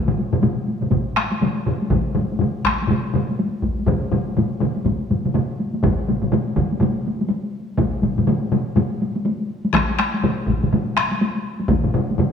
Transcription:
0.08 taiko low-mid, taiko mid
0.18 taiko high
0.32 taiko low-mid, taiko mid, taiko high
0.42 taiko low-mid, taiko mid, taiko high
0.67 taiko high
0.81 taiko low-mid, taiko mid, taiko high
0.90 taiko, taiko low-mid, taiko mid, taiko high
1.16 taiko rim, taiko high
1.31 taiko high
1.41 taiko low-mid, taiko mid, taiko high
1.66 taiko low-mid, taiko mid, taiko high
1.82 taiko high
1.90 taiko, taiko low-mid, taiko mid, taiko high
2.15 taiko low-mid, taiko mid, taiko high
2.32 taiko high
2.39 taiko low-mid, taiko mid, taiko high
2.64 taiko rim, taiko, taiko high
2.67 taiko rim
2.81 taiko high
2.88 taiko low-mid, taiko mid, taiko high
3.14 taiko low-mid, taiko mid, taiko high
3.29 taiko high
3.40 taiko high
3.62 taiko, taiko high
3.79 taiko high
3.87 taiko, taiko low-mid, taiko mid, taiko high
4.12 taiko low-mid, taiko mid, taiko high
4.28 taiko high
4.37 taiko low-mid, taiko mid, taiko high
4.60 taiko low-mid, taiko mid, taiko high
4.77 taiko high
4.85 taiko, taiko low-mid, taiko mid, taiko high
5.11 taiko low-mid, taiko mid, taiko high
5.25 taiko low-mid, taiko mid, taiko high
5.34 taiko low-mid, taiko mid, taiko high
5.59 taiko high
5.73 taiko high
5.83 taiko, taiko low-mid, taiko mid, taiko high
6.09 taiko low-mid, taiko mid, taiko high
6.22 taiko low-mid, taiko mid, taiko high
6.32 taiko low-mid, taiko mid, taiko high
6.56 taiko, taiko low-mid, taiko mid, taiko high
6.72 taiko high
6.80 taiko low-mid, taiko mid, taiko high
7.06 taiko high
7.21 taiko high
7.30 taiko high
7.77 taiko, taiko low-mid, taiko mid, taiko high
8.02 taiko low-mid, taiko mid, taiko high
8.18 taiko low-mid, taiko mid, taiko high
8.27 taiko low-mid, taiko mid, taiko high
8.52 taiko low-mid, taiko mid, taiko high
8.76 taiko low-mid, taiko mid, taiko high
9.01 taiko high
9.15 taiko high
9.25 taiko high
9.65 taiko high
9.73 taiko rim, taiko, taiko high
9.99 taiko rim, taiko high
10.14 taiko high
10.23 taiko low-mid, taiko mid, taiko high
10.47 taiko, taiko low-mid, taiko mid, taiko high
10.63 taiko low-mid, taiko mid, taiko high
10.73 taiko low-mid, taiko mid, taiko high
10.97 taiko rim, taiko high
11.12 taiko high
11.22 taiko high
11.61 taiko high
11.68 taiko, taiko low-mid, taiko mid, taiko high
11.84 taiko low-mid, taiko mid
11.94 taiko low-mid, taiko mid, taiko high
12.10 taiko high
12.18 taiko low-mid, taiko mid, taiko high

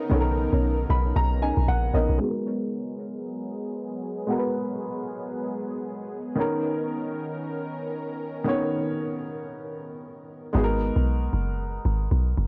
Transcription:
Already playing: C#3 D#3 B3 C#4 D#4 A#4
0.09 B1 D#3 B3 C#4 D#4 A#4
0.14 A4
0.20 A#4
0.53 B1 C#4 D#4 A#4
0.90 B1 B5
1.16 B1 A#5
1.42 C#4 D#4 A#4 G#5
1.57 B1
1.68 A#1 F#5
1.93 A#1 D#3 B3 C#4 D#4 A#4 D#5
2.09 B1
2.18 F#3 G#3 B3 F#4 G#4
2.23 G#4
2.29 A#4
4.27 G#3 B3 F#4
4.32 A#4
4.38 B4
6.35 D#3 B3 C#4 A#4
6.40 A#4
8.44 D#3 B3 C#4
8.49 C#5
10.53 G#1 G#3 B3 D#4 F#4
10.58 G#4
10.64 A#4
10.96 B1
11.33 F#1
11.85 G#1
12.11 B1
12.38 F#1

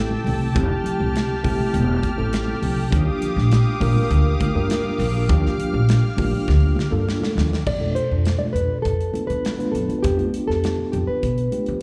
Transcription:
Already playing: A1 A3 C4 E4 G4 A4 G5 A5 E6
0.10 high conga
0.24 C2, open hi-hat, low conga
0.54 F1 A3 C4 E4 G4 F6, kick, closed hi-hat, low conga
0.84 muted upright bass stroke, closed hi-hat, low conga
0.99 C2, high conga
1.16 snare, closed hi-hat
1.43 C2 A3 C4 E4 G4, kick, open hi-hat, high conga
1.58 muted upright bass stroke, high conga
1.74 E1, closed hi-hat
2.03 kick, closed hi-hat, high conga
2.17 A1 A3 C4 E4 A4
2.33 snare, closed hi-hat
2.48 high conga
2.62 C2, open hi-hat, low conga
2.90 D#2 A#3 D4 F4 G4 F5 D6 D#6, kick, closed hi-hat, low conga
3.21 muted upright bass stroke, closed hi-hat, low conga
3.36 A#1, snare, high conga
3.51 snare, closed hi-hat
3.80 A#1 A#3 D4 F4 A#4, kick, open hi-hat, high conga, low conga
3.96 muted upright bass stroke, high conga
4.10 D2, closed hi-hat
4.40 kick, closed hi-hat, high conga
4.54 G2 A#3 D4 F4 A#4
4.70 snare, closed hi-hat
4.84 high conga
4.98 A#1, open hi-hat, low conga
5.28 D#2 A#3 D4 F4 G4 F6, kick, closed hi-hat, low conga
5.46 snare
5.58 muted upright bass stroke, closed hi-hat, low conga
5.73 A#1, high conga
5.89 snare, closed hi-hat
6.17 A#1 A#3 D4 F4 G4, kick, open hi-hat, high conga, low conga
6.32 muted upright bass stroke, high conga
6.48 D2, kick, snare
6.76 snare, high conga
6.91 G2 A#3 D4 F4 A4
7.09 snare
7.21 snare, high conga
7.35 D#2, snare, low conga
7.53 snare
7.67 F2 D5, kick, crash
7.79 B2 D4 F4 A4, high conga
7.95 C5, closed hi-hat
8.11 F2
8.25 snare, closed hi-hat
8.39 D5, high conga
8.53 F2 B4, closed hi-hat, low conga
8.82 F2 A4, kick, closed hi-hat
9.01 closed hi-hat
9.12 B3 D4 F4 A4, closed hi-hat, high conga
9.27 F3 B4, closed hi-hat
9.45 snare, closed hi-hat
9.57 B3 D4 F4 B4, closed hi-hat, high conga
9.72 F2 A4, closed hi-hat, low conga
9.89 muted upright bass stroke, closed hi-hat, high conga
10.03 F2 G4, kick, closed hi-hat
10.17 B3 D4 F4 G4, closed hi-hat, high conga
10.34 closed hi-hat
10.47 F2 A4, snare
10.64 snare, closed hi-hat
10.78 high conga
10.92 F2 G4, closed hi-hat, low conga
11.07 B4, muted upright bass stroke
11.23 B2, kick, closed hi-hat
11.38 closed hi-hat
11.51 B3 D4 F4 G4, closed hi-hat, high conga
11.66 F3, closed hi-hat

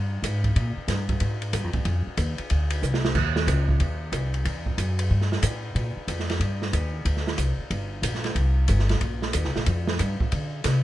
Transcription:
Already playing: G2
0.23 G#2, hi-hat pedal, ride
0.44 kick, ride
0.56 A#2, ride
0.77 muted upright bass stroke
0.88 G2, snare, hi-hat pedal, ride
1.09 kick, ride
1.20 G#2, ride
1.42 ride
1.53 G2, hi-hat pedal, ride
1.64 F2
1.73 D2, kick, ride
1.85 F2, ride
2.07 muted upright bass stroke
2.17 D#2, hi-hat pedal, ride
2.38 muted upright bass stroke, ride
2.50 D2, ride
2.70 ride
2.82 C2, hi-hat pedal
2.94 snare
3.05 snare
3.15 D#2, kick, crash
3.36 snare
3.47 C#2, hi-hat pedal, ride
3.69 kick
3.80 D#2, ride
4.12 C2, hi-hat pedal, ride
4.34 ride
4.45 E2, ride
4.66 kick
4.78 F#2, hi-hat pedal, ride
4.99 ride
5.10 G2
5.21 snare
5.32 snare
5.43 A2, hi-hat pedal, ride
5.75 A#2, ride
5.97 muted upright bass stroke
6.08 F2, hi-hat pedal, ride
6.20 snare
6.30 snare, ride
6.40 G2, ride
6.62 snare
6.73 D#2, hi-hat pedal, ride
7.05 D2, ride
7.17 snare
7.27 snare
7.38 C2, hi-hat pedal, ride
7.58 muted upright bass stroke
7.71 G1, ride
8.02 A#1, hi-hat pedal, ride
8.15 snare
8.24 snare, ride
8.35 C2, ride
8.68 G1, hi-hat pedal, ride
8.79 snare
8.89 snare, ride
9.01 A#1, ride
9.22 snare
9.33 D#2, hi-hat pedal, ride
9.44 C2, snare
9.56 A#1, snare
9.66 F2, ride
9.87 snare
9.99 G2, hi-hat pedal, ride
10.20 muted upright bass stroke, kick
10.32 D3, ride
10.64 C3, snare, hi-hat pedal, ride

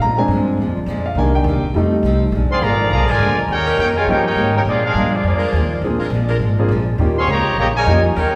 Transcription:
0.00 A#2 F3 G#3 A#5
0.04 D4
0.17 G#3 C4 D4 G#5
0.28 G2 A#2 F3 G#3
0.33 D4
0.57 G#2 A#2
0.61 F3 G#3 D4
0.67 F2
0.77 D2
0.86 F2 A#2 F3 G#3 D4
1.06 F5
1.15 C2 C3 D#3 A#3 D4 D#4 G#5
1.20 G4
1.35 G5
1.44 D#2 C3 A#3
1.48 D#4 G4
1.55 C2
1.63 A#1
1.74 F2 F3 G3 A3 C4 D#4 A4
2.03 C2 F3 C4 D#4
2.07 A4
2.32 A#1 A#2 F3 G#3 D4
2.49 C4 G#4 D5 F5 C6, muted upright bass stroke
2.61 G#1 A#2 D3 F3 G#3 A#3 D4 G#4 D5 F5 A#5
2.90 C2 A#2 D3 F3 G#3 A#3 D4 G#4 D5 F5 A#5
3.00 A#1
3.08 G#1 D3 F3 G#3 D4 F4 A#4 D5 G#5
3.19 D2 A#2 F3 G#3
3.23 D4
3.48 D#2 D#3 A#3 C#4 D#4 G4 A#4 C#5 G5
3.53 G4
3.66 G3 C#4 D#4 A#4
3.77 F2 D#3 A#3 C#4 D#4 G4 A#4 C#5 G5
3.81 G4
3.96 G#3 F4 A#4 C#5 G#5
4.07 G2 D#3 F3 A#3 C#4 D#4 G4 A#4 C#5 G5
4.26 A#3 C#4 D#4 G4 A#4 C#5 G5
4.36 G#2 D#3 A#3 C#4 G4
4.55 A#3 C#4 D#4 G4 A#4 C#5 G5
4.65 A#2 F3 G#3 A#3 D4 F4 G#4 D5
4.84 G#3 D4 F4 G#4 A#4 F5
4.94 G2 A#2 F3 G#3
4.98 D4
5.14 F3 G#3 A#3 D4 F4 G#4 D5
5.23 F2 A#2 F3 G#3 A#3 D4 F4 G#4 D5
5.28 D4
5.39 G#3 D4 F4 A#4
5.53 D#2 A#2 F3 G#3 D4
5.81 D2 A#2 F3 G#3 A#3 C4 D4 F4 G#4
5.86 D4
5.99 G#3 D4 F4 A#4, muted upright bass stroke
6.10 A#1 A#2 F3 G#3
6.15 D4
6.29 G#3 D4 F4 A#4
6.40 G#1 A#2 F3 G#3
6.44 D4
6.59 A#3 C4 D4 F4 G#4
6.69 A#1 A#2 F3 G#3
6.73 D4
6.98 D#2 D#3 A#3 C#4 D#4 F4 G4
7.03 G4
7.18 C4 G#4 C#5 F5 C6
7.27 C#2 C#3 D#3 G3 A#3 C#4 G4 C#5 D#5 A#5
7.31 G4
7.57 A#1 C#3 D#3 G3 A#3 C#4 G4 C#5 D#5 A#5
7.76 A#2 C#3 G#3 D#4 A#4 C#5 G#5
7.86 F2 D#3 A#3 C#4 D#4 F4 G4
8.16 D#2 D#3 G3 A#3 C#4 D#4 G4 A#4 C#5 G5

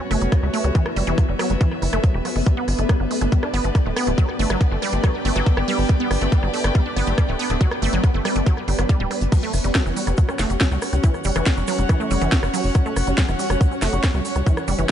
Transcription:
Already playing: B3 C#4 F#4 B4 C#5 F#5
0.00 C#4
0.11 F#1 A3, cross-stick, open hi-hat
0.21 F#1 G3, closed hi-hat
0.32 F#3, kick, cross-stick, closed hi-hat
0.37 E5
0.43 C#2 G3
0.54 A3, open hi-hat
0.64 C#2 G3, cross-stick, closed hi-hat
0.75 E3, kick, closed hi-hat
0.86 cross-stick
0.96 F#1 G3, open hi-hat
1.07 F#1 E3, closed hi-hat
1.18 F#3, kick, cross-stick, closed hi-hat
1.29 F#1 G3
1.39 F#3, cross-stick, open hi-hat
1.50 F#1 G3, closed hi-hat
1.61 E3, kick, closed hi-hat
1.71 cross-stick
1.82 F#1 E3, open hi-hat
1.93 F#1 A3, cross-stick, closed hi-hat
2.04 F#3, kick, closed hi-hat
2.14 E1 G4
2.25 F#3, cross-stick, open hi-hat
2.36 F#1 A3, open hi-hat
2.46 G3 D4, kick, closed hi-hat
2.57 B3
2.63 G4
2.68 G1, cross-stick, open hi-hat
2.79 G1 A3, closed hi-hat
2.89 G3, kick, cross-stick, closed hi-hat
3.00 G1 F#3
3.11 A3, open hi-hat
3.21 G1 A3, cross-stick, closed hi-hat
3.32 G3 D5, kick, closed hi-hat
3.43 D4, cross-stick
3.54 G1 B3, open hi-hat
3.64 G1 A3, closed hi-hat
3.75 G3, kick, cross-stick, closed hi-hat
3.81 G5
3.86 D1 A3
3.96 B3, cross-stick, open hi-hat
4.07 D1 A3, closed hi-hat
4.18 F#3, kick, closed hi-hat
4.29 cross-stick
4.39 G1 A3, open hi-hat
4.50 G1 F#3, cross-stick, closed hi-hat
4.61 B3, kick, closed hi-hat
4.71 G1 A3
4.82 G3, cross-stick, open hi-hat
4.93 G1 A3, closed hi-hat
5.04 F#3, kick, cross-stick, closed hi-hat
5.25 G1 A3, open hi-hat
5.36 G1 F#3, cross-stick, closed hi-hat
5.46 A4, kick, closed hi-hat
5.57 G1 G4, cross-stick
5.68 G3, open hi-hat
5.79 G1, open hi-hat
5.89 G3, kick, cross-stick, closed hi-hat
6.00 B3
6.11 G1, cross-stick, open hi-hat
6.21 G1 A3, closed hi-hat
6.32 G3, kick, closed hi-hat
6.43 G1 F#3, cross-stick
6.54 A3, open hi-hat
6.64 G1 A3, cross-stick, closed hi-hat
6.75 G3, kick, closed hi-hat
6.86 D4
6.96 G1 B3, cross-stick, open hi-hat
7.07 G1 A3, closed hi-hat
7.18 G3, kick, cross-stick, closed hi-hat
7.29 D1 A3
7.39 B3, open hi-hat
7.50 D1 A3, cross-stick, closed hi-hat
7.61 F#3, kick, closed hi-hat
7.71 cross-stick
7.82 G1 A3, open hi-hat
7.93 G1 F#3, closed hi-hat
8.04 B3, kick, cross-stick, closed hi-hat
8.14 G1 A3
8.25 G3, cross-stick, open hi-hat
8.36 G1 A3, closed hi-hat
8.46 F#3, kick, closed hi-hat
8.57 cross-stick
8.68 G1 G3, open hi-hat
8.79 G1 F#3, cross-stick, closed hi-hat
8.89 G3, kick, closed hi-hat
9.00 D1 G3
9.11 G3, cross-stick, open hi-hat
9.21 G1, closed hi-hat
9.32 F#3 C#4 C#5, kick, closed hi-hat, crash, shaker
9.43 A3, shaker
9.53 F#1, cross-stick, open hi-hat, shaker
9.58 F#4
9.64 F#1 G3 F#5, closed hi-hat, shaker
9.75 F#3, kick, cross-stick, snare, closed hi-hat, shaker
9.83 F#1 E3 C#5, shaker
9.96 G3, open hi-hat, shaker
10.07 F#1 G3, cross-stick, closed hi-hat, shaker
10.17 F#3, kick, closed hi-hat, shaker
10.29 C#4, cross-stick, shaker
10.39 F#1 A3, snare, open hi-hat, shaker
10.50 F#1 G3, closed hi-hat, shaker
10.61 F#3, kick, cross-stick, snare, closed hi-hat, shaker
10.71 C#2 G3, shaker
10.82 cross-stick, open hi-hat, shaker
10.93 C#2 G3, closed hi-hat, shaker
11.04 E3, kick, closed hi-hat, shaker
11.14 cross-stick, shaker
11.24 F#1 G3, open hi-hat, shaker
11.36 F#1 E3, cross-stick, closed hi-hat, shaker
11.46 A3, kick, snare, closed hi-hat, shaker
11.57 F#1 G3, shaker
11.67 F#3, cross-stick, open hi-hat, shaker
11.79 F#1 G3, closed hi-hat, shaker
11.89 E3, kick, cross-stick, closed hi-hat, shaker
12.00 A3, shaker
12.11 F#1 G3, open hi-hat, shaker
12.21 F#1 E3, cross-stick, closed hi-hat, shaker
12.32 G4, kick, snare, closed hi-hat, shaker
12.43 F#1 F#4, cross-stick, shaker
12.54 F#3, open hi-hat, shaker
12.64 F#1, open hi-hat, shaker
12.75 F#3, kick, cross-stick, closed hi-hat, shaker
12.86 A3, shaker
12.96 F#1, cross-stick, open hi-hat, shaker
13.07 F#1 G3, closed hi-hat, shaker
13.18 F#3, kick, snare, closed hi-hat, shaker
13.28 F#1 E3, cross-stick, shaker
13.39 G3, open hi-hat, shaker
13.50 F#1 G3, cross-stick, closed hi-hat, shaker
13.61 F#3, kick, closed hi-hat, shaker
13.72 C#4, shaker
13.82 F#1 A3, cross-stick, snare, open hi-hat, shaker
13.93 F#1 G3, closed hi-hat, shaker
14.03 F#3, kick, cross-stick, snare, closed hi-hat, shaker
14.13 C#2 G3, shaker
14.25 open hi-hat, shaker
14.36 C#2 G3, cross-stick, closed hi-hat, shaker
14.46 E3, kick, closed hi-hat, shaker
14.57 cross-stick, shaker
14.68 F#1 G3, open hi-hat, shaker
14.78 F#1 E3, closed hi-hat, shaker

